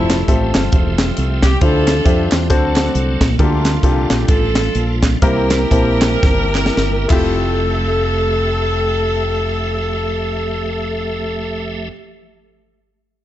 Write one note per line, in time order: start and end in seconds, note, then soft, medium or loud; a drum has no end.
0.00 0.22 F1 loud
0.00 1.57 F3 medium
0.00 0.69 G3 medium
0.00 0.54 A3 medium
0.00 1.57 A3 medium
0.00 0.17 C4 medium
0.00 1.57 C4 medium
0.00 0.17 E4 medium
0.00 0.25 E4 loud
0.00 0.16 F4 medium
0.00 0.17 G4 medium
0.00 1.58 G4 medium
0.00 0.17 A4 medium
0.00 1.58 E5 medium
0.10 snare loud
0.10 clap loud
0.10 closed hi-hat medium
0.28 0.51 A1 loud
0.28 0.90 C4 medium
0.28 0.90 F4 medium
0.28 0.90 G4 medium
0.28 0.91 A4 medium
0.28 0.90 E5 medium
0.28 kick loud
0.28 closed hi-hat loud
0.54 0.70 G1 medium
0.54 1.39 A3 medium
0.54 1.39 C4 medium
0.54 1.39 F4 medium
0.54 snare loud
0.54 clap loud
0.54 closed hi-hat medium
0.72 1.10 E1 loud
0.72 kick loud
0.72 closed hi-hat medium
0.98 snare loud
0.98 clap medium
0.98 closed hi-hat medium
1.17 1.55 C2 medium
1.17 closed hi-hat loud
1.43 1.61 G4 loud
1.43 kick medium
1.43 snare loud
1.43 clap loud
1.43 closed hi-hat medium
1.61 1.99 D2 loud
1.61 2.28 D3 medium
1.61 2.48 F3 medium
1.61 2.46 C4 medium
1.61 2.48 C4 medium
1.61 2.48 D4 medium
1.61 1.94 D4 medium
1.61 1.94 E4 medium
1.61 2.46 F4 medium
1.61 1.94 F4 medium
1.61 1.94 G4 medium
1.61 2.49 G4 medium
1.61 2.32 A4 loud
1.61 1.94 C5 loud
1.61 2.48 E5 medium
1.61 kick loud
1.61 closed hi-hat loud
1.87 snare loud
1.87 clap medium
1.87 closed hi-hat medium
2.05 2.28 F2 loud
2.05 2.48 D4 medium
2.05 2.50 F4 medium
2.05 2.50 G4 medium
2.05 2.48 C5 medium
2.05 2.50 E5 medium
2.05 kick loud
2.05 closed hi-hat medium
2.32 2.50 E2 medium
2.32 snare loud
2.32 clap loud
2.32 closed hi-hat medium
2.50 2.88 D2 loud
2.50 3.16 D3 medium
2.50 3.37 F#3 medium
2.50 3.37 A3 medium
2.50 3.24 C4 loud
2.50 3.37 C4 medium
2.50 3.24 D4 medium
2.50 3.37 D4 medium
2.50 3.24 F#4 medium
2.50 2.56 G#4 medium
2.50 3.24 A4 medium
2.50 3.24 C5 loud
2.50 kick loud
2.50 closed hi-hat loud
2.55 3.37 A4 medium
2.76 snare loud
2.76 clap medium
2.76 closed hi-hat medium
2.95 3.17 C2 medium
2.95 closed hi-hat medium
3.21 3.36 A#1 medium
3.21 kick medium
3.21 snare loud
3.21 clap medium
3.21 closed hi-hat medium
3.38 3.77 D2 loud
3.38 4.06 D3 medium
3.38 5.18 G3 medium
3.38 3.45 A3 soft
3.38 4.25 A3 medium
3.38 4.25 A#3 medium
3.38 3.72 A#3 medium
3.38 5.18 D4 medium
3.38 3.72 D4 medium
3.38 5.18 F4 medium
3.38 4.06 F4 medium
3.38 3.72 F4 medium
3.38 3.72 G4 medium
3.38 5.18 A4 medium
3.38 3.72 A4 medium
3.38 kick loud
3.38 closed hi-hat medium
3.44 5.21 F3 medium
3.65 snare medium
3.65 clap loud
3.65 closed hi-hat medium
3.83 4.06 C2 medium
3.83 4.47 A#2 medium
3.83 4.47 D4 medium
3.83 4.47 F4 medium
3.83 4.47 G4 medium
3.83 4.47 A4 medium
3.83 kick medium
3.83 closed hi-hat medium
4.10 4.26 A#1 medium
4.10 4.29 G4 medium
4.10 snare loud
4.10 clap loud
4.10 closed hi-hat medium
4.28 4.68 A1 loud
4.28 5.18 F4 medium
4.28 4.99 A4 loud
4.28 kick loud
4.28 closed hi-hat loud
4.55 snare loud
4.55 clap medium
4.55 closed hi-hat medium
4.75 5.15 A#1 loud
4.75 closed hi-hat medium
5.03 kick medium
5.03 snare loud
5.03 clap loud
5.03 closed hi-hat medium
5.22 5.64 C2 loud
5.22 5.98 C3 medium
5.22 7.07 G3 medium
5.22 5.58 A#3 medium
5.22 7.07 A#3 medium
5.22 5.58 C4 medium
5.22 7.07 C4 medium
5.22 5.58 E4 medium
5.22 7.07 E4 medium
5.22 5.58 G4 medium
5.22 7.07 G4 medium
5.22 5.58 A#4 medium
5.22 7.06 A#4 loud
5.22 7.07 A#4 medium
5.22 kick loud
5.22 closed hi-hat loud
5.50 snare loud
5.50 clap loud
5.50 closed hi-hat medium
5.71 6.15 A#1 loud
5.71 6.44 A#3 medium
5.71 6.44 C4 medium
5.71 6.44 E4 medium
5.71 6.44 G4 medium
5.71 6.44 A5 medium
5.71 kick medium
5.71 closed hi-hat loud
6.01 snare loud
6.01 clap loud
6.01 closed hi-hat medium
6.23 6.69 G1 medium
6.23 kick loud
6.23 snare medium
6.55 snare medium
6.55 clap medium
6.66 snare medium
6.77 7.05 G1 medium
6.77 snare medium
7.08 11.89 F1 loud
7.08 11.89 F2 medium
7.08 11.89 F3 medium
7.08 11.87 A3 medium
7.08 11.89 A3 medium
7.08 11.88 E4 medium
7.08 11.90 F4 medium
7.08 11.89 G4 medium
7.08 11.88 A4 loud
7.08 11.89 E5 medium
7.08 kick loud
7.08 clap medium
7.08 crash medium
7.13 11.91 G4 medium